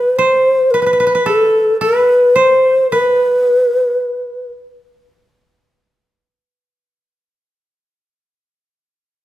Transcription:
0.00 0.18 B4 medium
0.00 0.24 B4 medium
0.16 0.72 C5 medium
0.16 0.80 C5 medium
0.71 1.26 B4 medium
0.71 0.82 B4 medium
0.82 0.86 B4 soft
0.86 0.93 B4 medium
0.93 0.99 B4 soft
1.00 1.06 B4 medium
1.07 1.14 B4 medium
1.15 1.81 B4 medium
1.26 3.16 A4 medium
1.26 1.77 A4 medium
1.81 2.42 B4 medium
1.81 2.38 B4 medium
2.36 2.98 C5 medium
2.36 2.91 C5 medium
2.91 4.53 B4 medium
2.91 4.70 B4 medium

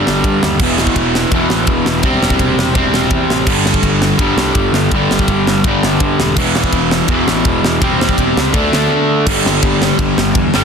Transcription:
0.00 0.60 G2 medium
0.00 0.60 D3 medium
0.00 0.63 G3 medium
0.07 0.21 G1 medium
0.07 snare loud
0.24 0.38 G2 medium
0.24 kick loud
0.24 ride medium
0.43 0.57 D#2 medium
0.43 snare loud
0.59 0.88 E1 loud
0.59 1.31 E2 medium
0.59 1.32 B2 loud
0.59 1.35 E3 loud
0.59 kick loud
0.59 crash loud
0.78 snare loud
0.87 kick medium
0.96 1.24 E1 loud
0.96 kick medium
0.96 ride medium
1.15 snare loud
1.31 1.46 E1 medium
1.31 2.03 E2 medium
1.31 2.03 B2 medium
1.31 2.05 E3 medium
1.31 kick loud
1.31 ride medium
1.50 1.64 A1 loud
1.50 snare loud
1.67 1.81 E1 loud
1.67 kick loud
1.67 ride medium
1.86 2.00 E1 medium
1.86 snare loud
2.03 2.17 E1 loud
2.03 2.74 C3 medium
2.03 2.76 G3 medium
2.03 2.76 C4 medium
2.03 kick loud
2.03 ride medium
2.22 2.36 E1 loud
2.22 snare loud
2.30 kick medium
2.39 2.53 E1 loud
2.39 kick medium
2.39 ride medium
2.57 2.71 E1 medium
2.57 snare loud
2.75 2.89 E1 loud
2.75 3.46 C3 medium
2.75 3.50 G3 medium
2.75 3.48 C4 medium
2.75 kick loud
2.75 ride medium
2.92 3.07 E1 medium
2.92 snare loud
3.10 3.25 E2 loud
3.10 kick loud
3.10 ride medium
3.29 3.43 A1 medium
3.29 snare loud
3.47 3.75 G1 medium
3.47 4.18 G2 medium
3.47 4.19 D3 loud
3.47 4.22 G3 loud
3.47 kick loud
3.47 crash loud
3.66 snare loud
3.74 kick loud
3.83 4.11 G1 medium
3.83 kick loud
3.83 ride medium
4.02 snare loud
4.18 4.33 G1 loud
4.18 4.90 G2 medium
4.18 4.91 D3 medium
4.18 4.95 G3 medium
4.18 kick loud
4.18 ride medium
4.36 4.51 C2 medium
4.36 snare loud
4.55 4.69 G1 loud
4.55 kick loud
4.55 ride medium
4.73 4.87 G1 medium
4.73 snare loud
4.91 5.06 G1 loud
4.91 5.64 G2 medium
4.91 5.64 D3 medium
4.91 kick loud
4.91 ride medium
4.96 5.68 G3 loud
5.10 5.24 G1 loud
5.10 snare loud
5.19 kick medium
5.28 5.42 G1 medium
5.28 kick loud
5.28 ride medium
5.46 5.60 G1 medium
5.46 snare loud
5.64 5.78 G1 medium
5.64 6.36 G2 medium
5.64 6.37 D3 medium
5.64 kick loud
5.64 ride medium
5.68 6.39 G3 medium
5.82 5.96 G1 medium
5.82 snare loud
6.00 6.14 G2 medium
6.00 kick loud
6.00 ride medium
6.19 6.33 E1 medium
6.19 snare loud
6.36 6.64 E1 loud
6.36 7.08 E2 medium
6.36 7.09 B2 loud
6.36 7.10 E3 loud
6.36 kick loud
6.36 crash loud
6.55 snare loud
6.64 kick loud
6.72 7.01 E1 loud
6.72 kick loud
6.72 ride medium
6.91 snare loud
7.08 7.23 E1 loud
7.08 7.81 E2 medium
7.08 7.81 B2 medium
7.08 kick loud
7.08 ride medium
7.13 7.82 E3 medium
7.27 7.41 A1 loud
7.27 snare loud
7.45 7.59 E1 medium
7.45 kick loud
7.45 ride medium
7.63 7.77 E1 medium
7.63 snare loud
7.81 7.95 E1 loud
7.81 8.52 C3 medium
7.81 8.54 G3 loud
7.81 8.54 C4 medium
7.81 kick loud
7.81 ride medium
7.99 8.14 E1 loud
7.99 snare loud
8.09 kick medium
8.18 8.32 E1 loud
8.18 kick loud
8.18 ride medium
8.36 8.50 C#2 medium
8.36 snare loud
8.52 8.68 D2 loud
8.52 9.25 D3 medium
8.52 9.26 A3 loud
8.52 9.27 D4 loud
8.52 kick loud
8.52 ride medium
8.73 8.87 D2 medium
8.73 snare loud
9.26 9.40 G1 medium
9.26 10.53 G2 medium
9.26 10.54 D3 medium
9.26 10.54 G3 loud
9.26 kick loud
9.26 crash loud
9.45 9.58 G1 loud
9.45 snare loud
9.62 9.90 G1 loud
9.62 kick loud
9.62 ride medium
9.82 snare loud
9.99 10.12 G1 loud
9.99 kick loud
9.99 ride medium
10.18 10.31 G1 medium
10.18 snare loud
10.35 10.49 E2 medium
10.35 kick loud
10.35 ride medium
10.54 10.64 G1 medium
10.54 10.64 G2 medium
10.54 10.64 D3 medium
10.54 10.64 G3 medium
10.54 snare loud

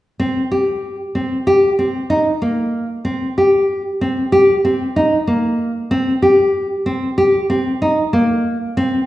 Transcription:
0.20 0.41 C4 medium
0.52 0.95 G4 soft
1.15 1.37 C4 soft
1.47 1.69 G4 medium
1.79 2.00 C4 soft
2.10 2.32 D#4 medium
2.42 2.85 A#3 soft
3.05 3.27 C4 medium
3.38 3.81 G4 soft
4.01 4.23 C4 soft
4.32 4.54 G4 medium
4.65 4.86 C4 soft
4.96 5.18 D#4 medium
5.27 5.71 A#3 soft
5.91 6.13 C4 medium
6.22 6.66 G4 soft
6.86 7.08 C4 medium
7.18 7.40 G4 medium
7.50 7.71 C4 medium
7.82 8.03 D#4 medium
8.13 8.57 A#3 medium
8.77 8.99 C4 medium

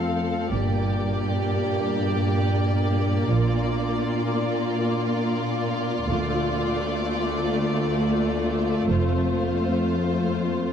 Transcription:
0.00 0.51 F2 soft
0.00 0.48 A3 soft
0.00 0.47 C4 soft
0.00 0.48 F4 soft
0.00 0.47 A4 soft
0.00 0.47 F5 soft
0.50 1.17 G1 soft
0.50 3.30 G2 soft
0.50 6.79 A#2 medium
0.50 6.05 A#3 medium
0.50 5.93 D4 medium
0.50 3.27 G4 medium
0.50 6.06 D5 soft
3.30 3.96 A#1 medium
3.30 6.05 A#2 soft
3.30 8.85 F4 medium
6.09 8.85 D2 medium
6.09 6.76 D2 medium
6.09 10.73 A3 medium
6.09 10.73 F4 medium
6.09 8.85 D5 medium
6.82 10.73 A3 medium
8.89 9.55 F1 soft
8.89 10.73 F2 soft
8.89 10.73 F4 soft
8.89 10.73 C5 soft

